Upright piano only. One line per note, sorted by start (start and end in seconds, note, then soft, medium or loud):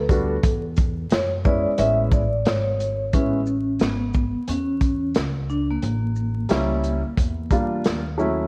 0.09 0.35 G3 medium
0.09 0.35 B3 medium
0.09 0.35 D4 medium
0.09 0.36 F#4 medium
1.44 1.70 G#3 medium
1.44 1.70 B3 medium
1.44 1.71 C#4 medium
1.44 1.71 E4 medium
1.78 2.20 G#3 medium
1.78 2.20 B3 medium
1.78 2.20 C#4 medium
1.78 2.21 E4 medium
3.13 3.39 G#3 medium
3.13 3.39 B3 medium
3.13 3.39 C#4 medium
3.13 3.39 E4 medium
6.49 6.99 G3 medium
6.49 7.00 A#3 medium
6.49 7.00 C#4 medium
6.49 7.00 E4 medium
7.51 8.01 G3 medium
7.51 8.01 A#3 medium
7.51 8.02 D4 medium
7.51 8.02 F4 medium
8.18 8.47 F#3 medium
8.18 8.47 A3 medium
8.18 8.47 C#4 medium
8.18 8.47 E4 medium